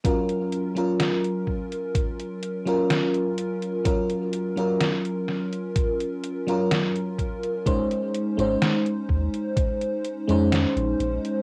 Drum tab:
HH |xxxxxx-xxxxxxxxx|xxxxxx-xxxxxxxxx|xxxxxx-xxxxxxxxx|
SD |----o-------o---|----o-o-----o---|----o-------o---|
BD |o-----o-o-------|o-------o-----o-|o-----o-o-------|